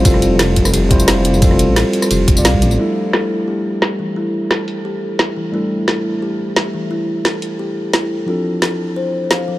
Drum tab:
RD |b---b---b---b---|b---b---b---b---|----------------|----------------|
HH |x-x-x-x-x-x-x-x-|x-x-x-o-x-x-x-x-|----------------|------o---------|
TB |x-x-x--xx--xx--x|x-x-x--xx-xxx-xx|----------------|----------------|
SD |-r--o--r----o---|-r--o--r----o---|----o-------o---|----o-------o---|
BD |o-----o---o-----|o---------o--o--|----------------|----------------|

RD |----------------|----------------|----------------|
HH |----------------|------o---------|----------------|
TB |----------------|----------------|----------------|
SD |----o-------o---|----o-------o---|----o-------o---|
BD |----------------|----------------|----------------|